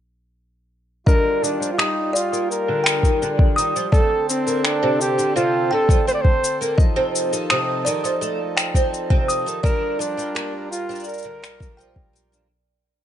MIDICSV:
0, 0, Header, 1, 6, 480
1, 0, Start_track
1, 0, Tempo, 714286
1, 719, Time_signature, 4, 2, 24, 8
1, 8763, End_track
2, 0, Start_track
2, 0, Title_t, "Music box"
2, 0, Program_c, 0, 10
2, 715, Note_on_c, 0, 75, 70
2, 945, Note_off_c, 0, 75, 0
2, 1200, Note_on_c, 0, 87, 64
2, 1428, Note_off_c, 0, 87, 0
2, 1433, Note_on_c, 0, 74, 73
2, 1664, Note_off_c, 0, 74, 0
2, 1907, Note_on_c, 0, 79, 75
2, 2050, Note_off_c, 0, 79, 0
2, 2393, Note_on_c, 0, 87, 70
2, 2624, Note_off_c, 0, 87, 0
2, 2635, Note_on_c, 0, 74, 68
2, 2865, Note_off_c, 0, 74, 0
2, 3836, Note_on_c, 0, 79, 73
2, 3974, Note_off_c, 0, 79, 0
2, 4554, Note_on_c, 0, 75, 79
2, 4785, Note_off_c, 0, 75, 0
2, 5039, Note_on_c, 0, 87, 67
2, 5267, Note_off_c, 0, 87, 0
2, 5274, Note_on_c, 0, 74, 65
2, 5505, Note_off_c, 0, 74, 0
2, 5756, Note_on_c, 0, 79, 75
2, 5895, Note_off_c, 0, 79, 0
2, 6239, Note_on_c, 0, 87, 70
2, 6467, Note_off_c, 0, 87, 0
2, 6473, Note_on_c, 0, 74, 79
2, 6704, Note_off_c, 0, 74, 0
2, 7677, Note_on_c, 0, 74, 74
2, 7906, Note_off_c, 0, 74, 0
2, 7911, Note_on_c, 0, 79, 73
2, 8143, Note_off_c, 0, 79, 0
2, 8763, End_track
3, 0, Start_track
3, 0, Title_t, "Flugelhorn"
3, 0, Program_c, 1, 56
3, 721, Note_on_c, 1, 70, 103
3, 965, Note_on_c, 1, 62, 82
3, 976, Note_off_c, 1, 70, 0
3, 1155, Note_off_c, 1, 62, 0
3, 1160, Note_on_c, 1, 65, 59
3, 1203, Note_on_c, 1, 63, 80
3, 1213, Note_off_c, 1, 65, 0
3, 1441, Note_on_c, 1, 65, 80
3, 1451, Note_off_c, 1, 63, 0
3, 1680, Note_off_c, 1, 65, 0
3, 1683, Note_on_c, 1, 70, 82
3, 2374, Note_off_c, 1, 70, 0
3, 2638, Note_on_c, 1, 69, 93
3, 2862, Note_off_c, 1, 69, 0
3, 2881, Note_on_c, 1, 60, 80
3, 3125, Note_on_c, 1, 62, 82
3, 3135, Note_off_c, 1, 60, 0
3, 3363, Note_on_c, 1, 67, 82
3, 3373, Note_off_c, 1, 62, 0
3, 3599, Note_off_c, 1, 67, 0
3, 3603, Note_on_c, 1, 65, 89
3, 3824, Note_off_c, 1, 65, 0
3, 3853, Note_on_c, 1, 69, 85
3, 4070, Note_off_c, 1, 69, 0
3, 4087, Note_on_c, 1, 72, 92
3, 4124, Note_on_c, 1, 74, 85
3, 4134, Note_off_c, 1, 72, 0
3, 4177, Note_on_c, 1, 72, 100
3, 4187, Note_off_c, 1, 74, 0
3, 4441, Note_off_c, 1, 72, 0
3, 6479, Note_on_c, 1, 70, 108
3, 6720, Note_on_c, 1, 62, 91
3, 6730, Note_off_c, 1, 70, 0
3, 7194, Note_off_c, 1, 62, 0
3, 7198, Note_on_c, 1, 65, 88
3, 7422, Note_off_c, 1, 65, 0
3, 7438, Note_on_c, 1, 70, 94
3, 8132, Note_off_c, 1, 70, 0
3, 8763, End_track
4, 0, Start_track
4, 0, Title_t, "Harmonium"
4, 0, Program_c, 2, 20
4, 717, Note_on_c, 2, 65, 70
4, 719, Note_on_c, 2, 55, 60
4, 2619, Note_off_c, 2, 65, 0
4, 2620, Note_off_c, 2, 55, 0
4, 2638, Note_on_c, 2, 69, 79
4, 2641, Note_on_c, 2, 50, 69
4, 2641, Note_on_c, 2, 60, 57
4, 4541, Note_off_c, 2, 50, 0
4, 4541, Note_off_c, 2, 60, 0
4, 4552, Note_on_c, 2, 63, 66
4, 4553, Note_on_c, 2, 53, 70
4, 6452, Note_off_c, 2, 69, 0
4, 6457, Note_off_c, 2, 53, 0
4, 6457, Note_off_c, 2, 63, 0
4, 6480, Note_on_c, 2, 55, 75
4, 6481, Note_on_c, 2, 70, 79
4, 6482, Note_on_c, 2, 65, 63
4, 8381, Note_off_c, 2, 55, 0
4, 8381, Note_off_c, 2, 70, 0
4, 8382, Note_off_c, 2, 65, 0
4, 8763, End_track
5, 0, Start_track
5, 0, Title_t, "Twelve-string acoustic guitar"
5, 0, Program_c, 3, 25
5, 720, Note_on_c, 3, 50, 87
5, 948, Note_off_c, 3, 50, 0
5, 956, Note_on_c, 3, 51, 67
5, 1066, Note_off_c, 3, 51, 0
5, 1076, Note_on_c, 3, 53, 61
5, 1146, Note_off_c, 3, 53, 0
5, 1194, Note_on_c, 3, 55, 75
5, 1311, Note_off_c, 3, 55, 0
5, 1561, Note_on_c, 3, 58, 65
5, 1788, Note_off_c, 3, 58, 0
5, 1803, Note_on_c, 3, 50, 97
5, 2029, Note_off_c, 3, 50, 0
5, 2044, Note_on_c, 3, 51, 67
5, 2150, Note_off_c, 3, 51, 0
5, 2163, Note_on_c, 3, 50, 87
5, 2389, Note_off_c, 3, 50, 0
5, 2405, Note_on_c, 3, 51, 75
5, 2510, Note_off_c, 3, 51, 0
5, 2525, Note_on_c, 3, 53, 69
5, 2591, Note_off_c, 3, 53, 0
5, 2645, Note_on_c, 3, 57, 77
5, 2756, Note_off_c, 3, 57, 0
5, 3001, Note_on_c, 3, 58, 68
5, 3228, Note_off_c, 3, 58, 0
5, 3243, Note_on_c, 3, 48, 97
5, 3469, Note_off_c, 3, 48, 0
5, 3480, Note_on_c, 3, 50, 66
5, 3588, Note_off_c, 3, 50, 0
5, 3599, Note_on_c, 3, 48, 93
5, 3827, Note_off_c, 3, 48, 0
5, 3846, Note_on_c, 3, 50, 72
5, 3951, Note_off_c, 3, 50, 0
5, 3962, Note_on_c, 3, 53, 73
5, 4029, Note_off_c, 3, 53, 0
5, 4081, Note_on_c, 3, 57, 73
5, 4194, Note_off_c, 3, 57, 0
5, 4441, Note_on_c, 3, 58, 69
5, 4560, Note_off_c, 3, 58, 0
5, 4678, Note_on_c, 3, 48, 100
5, 4906, Note_off_c, 3, 48, 0
5, 4923, Note_on_c, 3, 51, 69
5, 5029, Note_off_c, 3, 51, 0
5, 5045, Note_on_c, 3, 48, 104
5, 5270, Note_off_c, 3, 48, 0
5, 5283, Note_on_c, 3, 51, 77
5, 5389, Note_off_c, 3, 51, 0
5, 5402, Note_on_c, 3, 53, 71
5, 5469, Note_off_c, 3, 53, 0
5, 5518, Note_on_c, 3, 57, 76
5, 5633, Note_off_c, 3, 57, 0
5, 5880, Note_on_c, 3, 60, 70
5, 6108, Note_off_c, 3, 60, 0
5, 6116, Note_on_c, 3, 48, 96
5, 6346, Note_off_c, 3, 48, 0
5, 6358, Note_on_c, 3, 51, 69
5, 6467, Note_off_c, 3, 51, 0
5, 6475, Note_on_c, 3, 50, 95
5, 6705, Note_off_c, 3, 50, 0
5, 6713, Note_on_c, 3, 53, 67
5, 6824, Note_off_c, 3, 53, 0
5, 6837, Note_on_c, 3, 55, 73
5, 6907, Note_off_c, 3, 55, 0
5, 6954, Note_on_c, 3, 58, 76
5, 7071, Note_off_c, 3, 58, 0
5, 7318, Note_on_c, 3, 62, 74
5, 7547, Note_off_c, 3, 62, 0
5, 7555, Note_on_c, 3, 50, 102
5, 7665, Note_off_c, 3, 50, 0
5, 7794, Note_on_c, 3, 50, 70
5, 7911, Note_off_c, 3, 50, 0
5, 7918, Note_on_c, 3, 53, 85
5, 8027, Note_off_c, 3, 53, 0
5, 8153, Note_on_c, 3, 55, 71
5, 8264, Note_off_c, 3, 55, 0
5, 8280, Note_on_c, 3, 50, 72
5, 8394, Note_off_c, 3, 50, 0
5, 8763, End_track
6, 0, Start_track
6, 0, Title_t, "Drums"
6, 719, Note_on_c, 9, 36, 107
6, 728, Note_on_c, 9, 82, 28
6, 786, Note_off_c, 9, 36, 0
6, 796, Note_off_c, 9, 82, 0
6, 969, Note_on_c, 9, 82, 73
6, 1036, Note_off_c, 9, 82, 0
6, 1092, Note_on_c, 9, 82, 42
6, 1159, Note_off_c, 9, 82, 0
6, 1205, Note_on_c, 9, 26, 69
6, 1211, Note_on_c, 9, 82, 27
6, 1272, Note_off_c, 9, 26, 0
6, 1278, Note_off_c, 9, 82, 0
6, 1451, Note_on_c, 9, 82, 73
6, 1518, Note_off_c, 9, 82, 0
6, 1570, Note_on_c, 9, 82, 39
6, 1637, Note_off_c, 9, 82, 0
6, 1692, Note_on_c, 9, 82, 28
6, 1759, Note_off_c, 9, 82, 0
6, 1923, Note_on_c, 9, 26, 76
6, 1930, Note_on_c, 9, 82, 68
6, 1991, Note_off_c, 9, 26, 0
6, 1997, Note_off_c, 9, 82, 0
6, 2038, Note_on_c, 9, 36, 58
6, 2048, Note_on_c, 9, 82, 35
6, 2105, Note_off_c, 9, 36, 0
6, 2116, Note_off_c, 9, 82, 0
6, 2167, Note_on_c, 9, 82, 30
6, 2234, Note_off_c, 9, 82, 0
6, 2278, Note_on_c, 9, 36, 102
6, 2346, Note_off_c, 9, 36, 0
6, 2407, Note_on_c, 9, 82, 70
6, 2474, Note_off_c, 9, 82, 0
6, 2528, Note_on_c, 9, 82, 42
6, 2595, Note_off_c, 9, 82, 0
6, 2638, Note_on_c, 9, 36, 121
6, 2648, Note_on_c, 9, 82, 32
6, 2706, Note_off_c, 9, 36, 0
6, 2715, Note_off_c, 9, 82, 0
6, 2888, Note_on_c, 9, 82, 80
6, 2955, Note_off_c, 9, 82, 0
6, 3007, Note_on_c, 9, 82, 45
6, 3074, Note_off_c, 9, 82, 0
6, 3122, Note_on_c, 9, 26, 65
6, 3128, Note_on_c, 9, 82, 30
6, 3189, Note_off_c, 9, 26, 0
6, 3195, Note_off_c, 9, 82, 0
6, 3368, Note_on_c, 9, 82, 74
6, 3435, Note_off_c, 9, 82, 0
6, 3488, Note_on_c, 9, 82, 39
6, 3555, Note_off_c, 9, 82, 0
6, 3608, Note_on_c, 9, 82, 33
6, 3675, Note_off_c, 9, 82, 0
6, 3958, Note_on_c, 9, 36, 99
6, 3969, Note_on_c, 9, 82, 38
6, 4025, Note_off_c, 9, 36, 0
6, 4037, Note_off_c, 9, 82, 0
6, 4088, Note_on_c, 9, 82, 30
6, 4155, Note_off_c, 9, 82, 0
6, 4198, Note_on_c, 9, 36, 59
6, 4265, Note_off_c, 9, 36, 0
6, 4330, Note_on_c, 9, 82, 74
6, 4397, Note_off_c, 9, 82, 0
6, 4449, Note_on_c, 9, 82, 41
6, 4517, Note_off_c, 9, 82, 0
6, 4558, Note_on_c, 9, 36, 122
6, 4568, Note_on_c, 9, 82, 33
6, 4625, Note_off_c, 9, 36, 0
6, 4635, Note_off_c, 9, 82, 0
6, 4808, Note_on_c, 9, 82, 79
6, 4876, Note_off_c, 9, 82, 0
6, 4928, Note_on_c, 9, 82, 41
6, 4995, Note_off_c, 9, 82, 0
6, 5040, Note_on_c, 9, 26, 69
6, 5047, Note_on_c, 9, 82, 28
6, 5108, Note_off_c, 9, 26, 0
6, 5114, Note_off_c, 9, 82, 0
6, 5286, Note_on_c, 9, 82, 78
6, 5353, Note_off_c, 9, 82, 0
6, 5409, Note_on_c, 9, 82, 41
6, 5476, Note_off_c, 9, 82, 0
6, 5526, Note_on_c, 9, 82, 32
6, 5594, Note_off_c, 9, 82, 0
6, 5762, Note_on_c, 9, 26, 74
6, 5769, Note_on_c, 9, 82, 80
6, 5829, Note_off_c, 9, 26, 0
6, 5836, Note_off_c, 9, 82, 0
6, 5878, Note_on_c, 9, 36, 60
6, 5888, Note_on_c, 9, 82, 41
6, 5945, Note_off_c, 9, 36, 0
6, 5955, Note_off_c, 9, 82, 0
6, 6008, Note_on_c, 9, 82, 35
6, 6075, Note_off_c, 9, 82, 0
6, 6118, Note_on_c, 9, 36, 100
6, 6185, Note_off_c, 9, 36, 0
6, 6246, Note_on_c, 9, 82, 75
6, 6313, Note_off_c, 9, 82, 0
6, 6370, Note_on_c, 9, 82, 42
6, 6437, Note_off_c, 9, 82, 0
6, 6477, Note_on_c, 9, 36, 117
6, 6490, Note_on_c, 9, 82, 35
6, 6544, Note_off_c, 9, 36, 0
6, 6557, Note_off_c, 9, 82, 0
6, 6727, Note_on_c, 9, 82, 76
6, 6794, Note_off_c, 9, 82, 0
6, 6847, Note_on_c, 9, 82, 43
6, 6915, Note_off_c, 9, 82, 0
6, 6964, Note_on_c, 9, 26, 64
6, 6970, Note_on_c, 9, 82, 32
6, 7031, Note_off_c, 9, 26, 0
6, 7037, Note_off_c, 9, 82, 0
6, 7208, Note_on_c, 9, 82, 76
6, 7275, Note_off_c, 9, 82, 0
6, 7329, Note_on_c, 9, 82, 19
6, 7361, Note_off_c, 9, 82, 0
6, 7361, Note_on_c, 9, 82, 22
6, 7391, Note_off_c, 9, 82, 0
6, 7391, Note_on_c, 9, 82, 23
6, 7420, Note_off_c, 9, 82, 0
6, 7420, Note_on_c, 9, 82, 28
6, 7452, Note_off_c, 9, 82, 0
6, 7452, Note_on_c, 9, 82, 29
6, 7484, Note_off_c, 9, 82, 0
6, 7484, Note_on_c, 9, 82, 34
6, 7515, Note_off_c, 9, 82, 0
6, 7515, Note_on_c, 9, 82, 39
6, 7543, Note_off_c, 9, 82, 0
6, 7543, Note_on_c, 9, 82, 38
6, 7610, Note_off_c, 9, 82, 0
6, 7685, Note_on_c, 9, 26, 75
6, 7692, Note_on_c, 9, 82, 79
6, 7752, Note_off_c, 9, 26, 0
6, 7759, Note_off_c, 9, 82, 0
6, 7799, Note_on_c, 9, 36, 101
6, 7811, Note_on_c, 9, 82, 44
6, 7866, Note_off_c, 9, 36, 0
6, 7878, Note_off_c, 9, 82, 0
6, 7933, Note_on_c, 9, 82, 34
6, 8000, Note_off_c, 9, 82, 0
6, 8038, Note_on_c, 9, 36, 62
6, 8105, Note_off_c, 9, 36, 0
6, 8170, Note_on_c, 9, 82, 73
6, 8238, Note_off_c, 9, 82, 0
6, 8290, Note_on_c, 9, 82, 42
6, 8357, Note_off_c, 9, 82, 0
6, 8763, End_track
0, 0, End_of_file